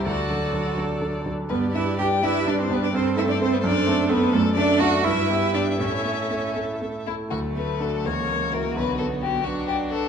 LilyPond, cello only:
\new Staff \with { instrumentName = "Cello" } { \time 6/8 \key d \mixolydian \tempo 4. = 83 fis'4. r4. | b8 e'8 g'8 e'8 d'16 c'16 b16 d'16 | c'8 e'16 d'16 c'16 b16 d'4 b8 | \key d \major a8 d'8 fis'8 e'4 d'8 |
cis'4. r4. | fis4. e4. | d4. fis4. | }